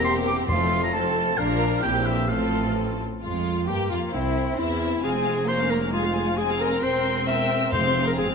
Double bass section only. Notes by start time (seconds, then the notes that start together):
Already playing: E1
0.48 F1
1.38 A#1
1.83 A#1
2.29 A1
3.22 F2
3.68 G2
3.90 F2
4.12 C2
4.58 E2
5.02 F1
6.83 E1
7.73 F1
8.18 G1